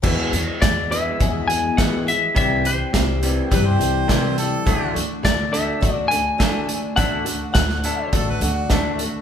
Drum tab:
CC |x---------------|----------------|----------------|----------------|
HH |--x-x-x-x-x-x-x-|x-x-x-x-x-x-x-x-|x-x-x-x-x-x-x-x-|x-x-x-x-x-x-x-x-|
SD |----o-------o---|----o-------o---|----o-------o---|----oo------o---|
BD |o---o---o---o---|o---o---o---o---|o---o---o---o---|o---o---o---o---|